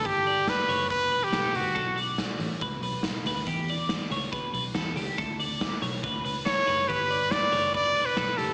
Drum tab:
HH |xoxoxoxo|xoxoxoxo|xoxoxoxo|xoxoxoxo|
SD |--o---o-|--o---o-|--o---o-|--o---o-|
BD |o-o-o-o-|o-o-o-o-|o-o-o-o-|o-o-o-o-|

HH |xoxoxoxo|
SD |--o---o-|
BD |o-o-o-o-|